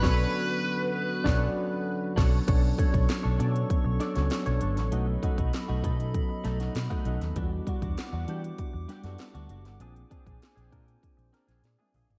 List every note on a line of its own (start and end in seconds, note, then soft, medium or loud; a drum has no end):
0.00 0.24 B1 loud
0.00 2.44 D3 medium
0.00 0.03 F#3 medium
0.00 0.24 F#3 loud
0.00 2.49 A3 medium
0.00 0.03 B3 medium
0.00 2.45 B3 medium
0.00 0.24 B3 loud
0.00 0.24 C#4 loud
0.00 0.04 D4 medium
0.00 0.24 D4 loud
0.00 0.25 D4 loud
0.00 2.44 F#4 medium
0.00 0.04 A4 medium
0.00 0.24 A4 loud
0.00 2.12 B4 medium
0.00 0.24 C#5 loud
0.00 kick loud
0.00 crash medium
0.04 0.25 A4 loud
0.04 snare loud
1.24 1.47 B1 loud
1.24 1.46 F#3 loud
1.24 1.47 B3 loud
1.24 1.47 C#4 loud
1.24 1.46 D4 loud
1.24 1.47 D4 loud
1.24 1.46 A4 loud
1.24 1.47 A4 loud
1.24 1.47 C#5 loud
1.24 1.47 D5 loud
1.24 kick loud
1.24 snare loud
2.16 2.38 B1 loud
2.16 2.38 D4 loud
2.16 2.38 A4 loud
2.16 2.38 C#5 loud
2.16 kick loud
2.16 snare loud
2.16 crash medium
2.47 2.71 B1 medium
2.47 3.11 F#3 medium
2.47 3.12 B3 medium
2.47 3.12 C#4 medium
2.47 2.69 D4 medium
2.47 3.12 D4 medium
2.47 7.32 A4 medium
2.47 2.63 A4 medium
2.47 3.12 A4 medium
2.47 4.90 C#5 medium
2.47 2.61 C#5 loud
2.47 4.90 C#6 medium
2.47 kick loud
2.47 closed hi-hat loud
2.47 crash loud
2.63 muted clean electric guitar stroke soft
2.78 2.93 D4 medium
2.78 2.92 A4 medium
2.78 2.92 C#5 medium
2.78 kick medium
2.78 closed hi-hat medium
2.93 3.06 B1 loud
2.93 3.08 D4 medium
2.93 3.08 A4 medium
2.93 3.09 C#5 medium
2.93 kick medium
2.93 closed hi-hat medium
3.09 muted clean electric guitar stroke soft
3.09 snare loud
3.09 closed hi-hat medium
3.23 3.36 B1 medium
3.23 3.37 D4 medium
3.23 3.38 A4 medium
3.23 3.39 C#5 medium
3.38 3.63 B2 loud
3.38 3.92 F#3 medium
3.38 3.93 B3 medium
3.38 3.93 C#4 medium
3.38 3.61 D4 medium
3.38 3.93 D4 medium
3.38 3.54 A4 medium
3.38 3.93 A4 medium
3.38 3.54 D5 medium
3.38 closed hi-hat medium
3.54 muted clean electric guitar stroke soft
3.54 closed hi-hat medium
3.70 muted clean electric guitar stroke soft
3.70 kick loud
3.70 closed hi-hat medium
3.85 3.97 B1 medium
3.85 muted clean electric guitar stroke soft
4.00 4.16 D4 medium
4.00 4.15 A4 medium
4.00 4.15 D5 loud
4.00 snare soft
4.00 closed hi-hat medium
4.15 4.28 C#2 medium
4.15 4.69 F#3 medium
4.15 4.69 B3 medium
4.15 4.69 C#4 medium
4.15 4.69 D4 medium
4.15 4.29 D4 medium
4.15 4.30 A4 medium
4.15 4.69 A4 loud
4.15 4.30 C#5 medium
4.15 snare soft
4.15 closed hi-hat medium
4.30 muted clean electric guitar stroke soft
4.30 snare loud
4.30 closed hi-hat medium
4.46 4.58 B1 medium
4.46 4.60 D4 medium
4.46 4.61 A4 medium
4.46 4.61 C#5 medium
4.46 closed hi-hat soft
4.61 4.78 G1 medium
4.61 4.78 D4 medium
4.61 4.76 A4 medium
4.61 4.75 C#5 medium
4.61 closed hi-hat medium
4.76 4.89 A1 medium
4.76 muted clean electric guitar stroke medium
4.76 snare soft
4.76 closed hi-hat medium
4.92 5.16 B1 loud
4.92 5.56 F#3 medium
4.92 5.14 A3 medium
4.92 5.56 B3 medium
4.92 5.56 C#4 medium
4.92 5.56 D#4 medium
4.92 5.07 D#4 medium
4.92 5.06 F#4 medium
4.92 5.56 A4 loud
4.92 7.34 D#5 medium
4.92 7.34 B5 loud
4.92 closed hi-hat medium
5.07 muted clean electric guitar stroke soft
5.22 5.38 A3 medium
5.22 5.37 D#4 medium
5.22 5.36 F#4 medium
5.22 kick medium
5.22 closed hi-hat medium
5.38 5.49 B1 loud
5.38 5.52 A3 medium
5.38 5.52 D#4 medium
5.38 5.53 F#4 medium
5.38 kick medium
5.38 closed hi-hat medium
5.53 muted clean electric guitar stroke soft
5.53 snare loud
5.53 closed hi-hat medium
5.68 5.81 B1 medium
5.68 5.82 A3 medium
5.68 5.83 D#4 medium
5.68 5.84 F#4 medium
5.83 6.18 B2 loud
5.83 6.68 F#3 medium
5.83 6.05 A3 medium
5.83 6.69 B3 medium
5.83 6.69 C#4 medium
5.83 6.69 D#4 medium
5.83 5.99 D#4 medium
5.83 6.69 A4 loud
5.83 5.98 A4 loud
5.83 kick medium
5.83 closed hi-hat medium
5.99 muted clean electric guitar stroke soft
5.99 closed hi-hat medium
6.13 muted clean electric guitar stroke soft
6.13 kick loud
6.13 closed hi-hat medium
6.29 muted clean electric guitar stroke soft
6.44 6.68 B1 loud
6.44 6.60 A3 loud
6.44 6.59 D#4 medium
6.44 6.59 A4 loud
6.44 snare soft
6.44 closed hi-hat medium
6.60 6.74 A3 medium
6.60 6.74 D#4 medium
6.60 6.74 F#4 medium
6.60 snare soft
6.60 closed hi-hat medium
6.75 6.87 B2 loud
6.75 muted clean electric guitar stroke soft
6.75 snare loud
6.75 closed hi-hat medium
6.90 7.04 A3 medium
6.90 7.05 D#4 medium
6.90 7.06 F#4 medium
6.90 kick medium
6.90 closed hi-hat soft
7.05 7.17 B1 loud
7.05 7.27 F#3 medium
7.05 7.23 A3 medium
7.05 7.27 B3 medium
7.05 7.27 C#4 medium
7.05 7.27 D#4 medium
7.05 7.21 D#4 medium
7.05 7.20 F#4 medium
7.05 7.27 A4 loud
7.05 closed hi-hat medium
7.21 7.33 D#2 medium
7.21 muted clean electric guitar stroke soft
7.21 snare soft
7.21 closed hi-hat medium
7.36 7.59 E2 loud
7.36 8.00 G3 medium
7.36 7.58 G3 medium
7.36 9.78 G3 medium
7.36 8.00 B3 medium
7.36 8.00 D4 medium
7.36 7.52 D4 medium
7.36 8.00 E4 medium
7.36 7.43 F4 medium
7.36 7.51 F#4 medium
7.36 9.78 F#5 medium
7.36 12.19 D6 medium
7.36 kick loud
7.36 closed hi-hat medium
7.43 8.03 F#4 loud
7.52 muted clean electric guitar stroke soft
7.67 7.83 G3 medium
7.67 7.82 D4 medium
7.67 7.81 F#4 medium
7.67 kick medium
7.67 closed hi-hat medium
7.82 7.94 E2 loud
7.82 7.97 G3 medium
7.82 7.97 D4 medium
7.82 7.98 F#4 medium
7.82 kick medium
7.82 closed hi-hat soft
7.98 muted clean electric guitar stroke soft
7.98 snare loud
7.98 closed hi-hat medium
8.12 8.24 E2 medium
8.12 8.27 G3 medium
8.12 8.28 D4 medium
8.12 8.29 F#4 medium
8.27 8.51 E3 medium
8.27 8.81 G3 medium
8.27 8.49 G3 medium
8.27 8.81 B3 medium
8.27 8.81 D4 medium
8.27 8.43 D4 loud
8.27 8.81 E4 medium
8.27 8.81 F#4 loud
8.27 8.43 G4 loud
8.27 closed hi-hat medium
8.43 muted clean electric guitar stroke soft
8.43 closed hi-hat medium
8.58 muted clean electric guitar stroke soft
8.58 kick medium
8.58 closed hi-hat medium
8.73 8.85 E2 medium
8.73 muted clean electric guitar stroke medium
8.88 9.04 G3 medium
8.88 9.04 D4 medium
8.88 9.04 G4 medium
8.88 snare soft
8.88 closed hi-hat medium
9.04 9.15 F#2 medium
9.04 9.57 G3 medium
9.04 9.18 G3 medium
9.04 9.57 B3 medium
9.04 9.57 D4 medium
9.04 9.19 D4 medium
9.04 9.57 E4 medium
9.04 9.19 F#4 medium
9.04 9.58 A4 medium
9.04 snare soft
9.04 closed hi-hat medium
9.18 muted clean electric guitar stroke soft
9.18 snare loud
9.18 closed hi-hat medium
9.34 9.46 D2 medium
9.34 9.48 G3 medium
9.34 9.49 D4 medium
9.34 9.49 F#4 medium
9.34 closed hi-hat soft
9.49 9.65 F#1 medium
9.49 9.66 G3 medium
9.49 9.65 D4 medium
9.49 9.64 F#4 medium
9.49 closed hi-hat medium
9.65 9.77 G1 loud
9.65 muted clean electric guitar stroke medium
9.65 snare soft
9.65 closed hi-hat medium
9.80 10.04 A#1 loud
9.80 10.44 A#3 medium
9.80 10.02 C4 medium
9.80 10.44 C4 medium
9.80 9.95 D4 medium
9.80 10.44 D4 medium
9.80 10.44 F4 medium
9.80 9.94 G#4 medium
9.80 10.45 G#4 loud
9.80 12.19 C5 medium
9.80 12.19 G#5 medium
9.80 closed hi-hat loud
9.95 muted clean electric guitar stroke medium
9.95 closed hi-hat soft
10.10 10.26 C4 medium
10.10 10.25 D4 medium
10.10 10.24 G#4 medium
10.10 kick medium
10.10 closed hi-hat medium
10.25 10.38 A#1 medium
10.25 10.40 C4 medium
10.25 10.41 D4 medium
10.25 10.41 G#4 medium
10.25 kick medium
10.25 closed hi-hat medium
10.41 muted clean electric guitar stroke soft
10.41 snare loud
10.41 closed hi-hat medium
10.56 10.68 A#1 medium
10.56 10.70 C4 soft
10.56 10.71 D4 medium
10.56 10.72 G#4 medium
10.56 closed hi-hat soft
10.71 10.95 A#2 medium
10.71 11.57 A#3 medium
10.71 10.93 C4 medium
10.71 11.57 C4 medium
10.71 10.86 D4 medium
10.71 11.57 D4 medium
10.71 11.57 F4 medium
10.71 11.34 G#4 medium
10.71 10.86 A#4 loud
10.71 kick medium
10.71 closed hi-hat medium
10.86 muted clean electric guitar stroke soft
10.86 closed hi-hat soft
11.02 muted clean electric guitar stroke soft
11.02 kick loud
11.02 closed hi-hat medium
11.17 11.30 A#1 medium
11.17 muted clean electric guitar stroke soft
11.17 closed hi-hat soft
11.33 11.48 C4 medium
11.33 11.47 D4 medium
11.33 11.47 A#4 medium
11.33 snare soft
11.33 closed hi-hat medium
11.48 11.60 A#1 medium
11.48 11.62 C4 soft
11.48 11.62 D4 medium
11.48 11.63 G#4 medium
11.48 snare soft
11.48 closed hi-hat medium
11.63 11.75 A#2 medium
11.63 11.79 G#4 medium
11.63 11.78 D5 medium
11.63 muted clean electric guitar stroke soft
11.63 snare medium
11.63 closed hi-hat medium
11.79 11.93 C4 medium
11.79 11.94 D4 medium
11.79 11.95 G#4 medium
11.79 11.94 A#4 medium
11.79 11.94 E5 medium
11.79 high tom medium
11.94 12.06 A#1 medium
11.94 12.11 C4 medium
11.94 12.09 D4 medium
11.94 12.09 G#4 medium
11.94 12.09 C5 medium
11.94 12.09 F5 medium
11.94 mid tom medium
11.94 open hi-hat medium
12.10 12.19 G#1 medium
12.10 12.19 G#4 medium
12.10 12.19 D5 medium
12.10 muted clean electric guitar stroke soft
12.10 closed hi-hat medium
12.10 floor tom medium